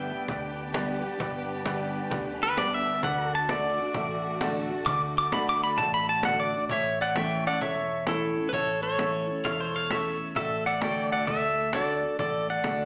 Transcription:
Already playing: fingered electric bass G1, steel-string acoustic guitar G2 D3 G3 B3 G4, violin section B3 D4 G4, upright piano G4 B4 E5, pedal steel guitar B4 D5 G5
0.11 steel-string acoustic guitar B3 G4, cajon slap
0.28 fingered electric bass D2, steel-string acoustic guitar D3, upright piano G4 B4 D5, cajon bass
0.58 cajon slap
0.73 steel-string acoustic guitar D3 G3 B3 G4, upright piano G4 B4 D5, cajon slap
1.01 steel-string acoustic guitar B3 G4, cajon slap
1.17 fingered electric bass G1, steel-string acoustic guitar G2, upright piano G4 B4 D5, cajon bass
1.49 cajon slap
1.64 steel-string acoustic guitar D3 G3 B3 G4, upright piano G4 B4 D5, cajon slap
1.95 cajon slap
2.10 fingered electric bass D2, steel-string acoustic guitar D3, upright piano G4 B4 D5, cajon bass
2.41 pedal steel guitar B4, cajon slap
2.57 steel-string acoustic guitar D3 G3 B3 G4, upright piano G4 B4 D5, pedal steel guitar D5, cajon slap
2.74 pedal steel guitar E5
2.87 cajon slap
3.01 fingered electric bass D2, steel-string acoustic guitar D3, violin section A3 F#4, upright piano F#4 A4 D5, pedal steel guitar B4 D5 F#5, cajon bass
3.29 pedal steel guitar A4, cajon slap
3.35 pedal steel guitar A5
3.48 steel-string acoustic guitar D3 A3 D4 F#4, upright piano F#4 A4 D5, pedal steel guitar D5, cajon slap
3.78 steel-string acoustic guitar D4 F#4, cajon slap
3.94 fingered electric bass A1, steel-string acoustic guitar A2, upright piano F#4 A4 E5, cajon bass
4.25 cajon slap
4.41 steel-string acoustic guitar D3 A3 D4 F#4, upright piano F#4 A4 D5, cajon slap
4.70 steel-string acoustic guitar D4 F#4, cajon slap
4.86 fingered electric bass D2, steel-string acoustic guitar D3, upright piano F#4 A4 D5, pedal steel guitar D6, cajon bass
5.16 pedal steel guitar D6, cajon slap
5.32 steel-string acoustic guitar D3 A3 D4 F#4, upright piano F#4 A4 D5, pedal steel guitar B5, cajon slap
5.49 pedal steel guitar D6
5.62 pedal steel guitar B5, cajon slap
5.78 fingered electric bass A1, steel-string acoustic guitar A2, upright piano F#4 A4 D5, pedal steel guitar A5, cajon bass
5.94 pedal steel guitar B5
6.07 pedal steel guitar A5, cajon slap
6.23 steel-string acoustic guitar D3 A3 D4 F#4, upright piano F#4 A4 D5, pedal steel guitar F#5, cajon slap
6.40 pedal steel guitar D5
6.53 steel-string acoustic guitar D4 F#4, cajon slap
6.69 fingered electric bass A1, steel-string acoustic guitar A2, upright piano E4 A4 C#5, pedal steel guitar C#5 E5, cajon bass
6.99 pedal steel guitar D5 F#5, cajon slap
7.15 steel-string acoustic guitar E3 A3 C#4 E4, upright piano E4 A4 C#5, pedal steel guitar A4 D5 E5 G5, cajon slap
7.38 pedal steel guitar C#5
7.45 steel-string acoustic guitar C#4 E4, pedal steel guitar D5 F#5, cajon slap
7.60 fingered electric bass E1, steel-string acoustic guitar E2, upright piano E4 A4 C#5, pedal steel guitar C#5 E5, cajon bass
7.91 cajon slap
8.07 steel-string acoustic guitar E3 A3 C#4 E4, upright piano E4 A4 C#5, pedal steel guitar E4 A4, cajon slap
8.36 steel-string acoustic guitar C#4 E4, cajon slap
8.49 fingered electric bass A1, pedal steel guitar B4, cajon bass
8.53 steel-string acoustic guitar A2, upright piano E4 A4 C#5, pedal steel guitar A4 C#5
8.82 pedal steel guitar A4 C#5, cajon slap
8.99 steel-string acoustic guitar E3 A3 C#4 E4, upright piano E4 A4 C#5, cajon slap
9.27 steel-string acoustic guitar C#4 E4, cajon slap
9.44 fingered electric bass E1, steel-string acoustic guitar E2, upright piano E4 A4 C#5, clean electric guitar F5, cajon bass
9.60 clean electric guitar C5
9.74 clean electric guitar F5, cajon slap
9.89 steel-string acoustic guitar E3 A3 C#4 E4, upright piano E4 A4 C#5, clean electric guitar E5, cajon slap
10.20 cajon slap
10.36 fingered electric bass A1, steel-string acoustic guitar A2, upright piano F#4 A4 D5, pedal steel guitar A4 E5, cajon bass
10.66 pedal steel guitar D5 F#5, cajon slap
10.81 steel-string acoustic guitar D3 A3 D4 F#4, upright piano F#4 A4 D5, pedal steel guitar A4 C#5 D5 G5, cajon slap
11.02 pedal steel guitar D5
11.11 pedal steel guitar D5 F#5, cajon slap
11.27 fingered electric bass D2, steel-string acoustic guitar A3, upright piano F#4 A4 D5, pedal steel guitar A4 E5, cajon bass
11.57 cajon slap
11.72 steel-string acoustic guitar D3 A3 D4 F#4, upright piano F#4 A4 D5, pedal steel guitar A4 D5, cajon slap
12.03 steel-string acoustic guitar D4 F#4, cajon slap
12.19 fingered electric bass A1, steel-string acoustic guitar A2, upright piano F#4 A4 D5, pedal steel guitar A4 D5, cajon bass
12.48 pedal steel guitar D5 F#5, cajon slap
12.63 fingered electric bass C#2, steel-string acoustic guitar D3 A3 D4 F#4, upright piano F#4 A4 D5, cajon slap

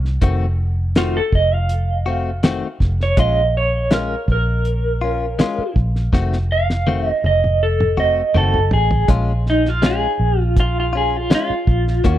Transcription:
Already playing: fingered electric bass C2
0.05 snare
0.22 fingered electric bass F1, clean electric guitar D#3 A3 C4 F#4, kick, closed hi-hat
0.95 clean electric guitar D#3 A3 C4 F4 F#4, snare, closed hi-hat
1.17 clean electric guitar A4
1.32 fingered electric bass F1, clean electric guitar D#5, kick
1.54 clean electric guitar F5
1.69 closed hi-hat
2.06 clean electric guitar A3 C4 F#4
2.43 clean electric guitar D#3 A3 C4 F#4, snare, closed hi-hat
2.80 fingered electric bass F1, kick, snare
3.00 clean electric guitar C#5, snare
3.17 fingered electric bass A#1, clean electric guitar G#3 C#4 F4 D#5, kick, closed hi-hat
3.57 clean electric guitar C#5
3.91 clean electric guitar G#3 C#4 F4 A#4, snare, closed hi-hat
4.28 fingered electric bass A#1, clean electric guitar A#4, kick
4.65 closed hi-hat
5.01 clean electric guitar C#4 F4
5.39 clean electric guitar G#3 C#4 F4, snare, closed hi-hat
5.58 muted fingered electric bass stroke
5.76 fingered electric bass A#1, kick
5.96 snare
6.13 fingered electric bass F1, clean electric guitar D#3 A3 C4 F#4, kick, snare
6.33 snare
6.52 clean electric guitar F5
6.70 snare
6.87 clean electric guitar D#3 A3 C4 F#4, high tom
7.08 clean electric guitar D#5
7.24 fingered electric bass F1, clean electric guitar D#5, high tom
7.44 mid tom
7.63 clean electric guitar A4
7.80 mid tom
7.97 clean electric guitar A3 C4 F#4 D#5, mid tom
8.34 fingered electric bass F#1, clean electric guitar D#3 A3 C4 F#4 A4, mid tom
8.54 floor tom
8.71 fingered electric bass A1, clean electric guitar G#4, floor tom
8.91 floor tom
9.08 fingered electric bass A#1, clean electric guitar G#3 C#4 F4, kick, closed hi-hat
9.46 clean electric guitar D#4, snare
9.66 clean electric guitar F4, snare
9.82 clean electric guitar G#3 C#4 F4 G#4, snare, closed hi-hat
10.20 fingered electric bass A#1
10.42 clean electric guitar F4
10.56 clean electric guitar F4, kick, closed hi-hat
10.80 clean electric guitar F4
10.93 clean electric guitar C#4 F4
10.97 clean electric guitar G#4
11.17 clean electric guitar F4
11.30 clean electric guitar G#3 C#4 F4, snare, closed hi-hat
11.35 clean electric guitar F4
11.50 muted fingered electric bass stroke
11.67 fingered electric bass A#1, kick
11.88 snare
12.04 fingered electric bass D#2, clean electric guitar D#3 A#3 C#4 F#4, kick, closed hi-hat

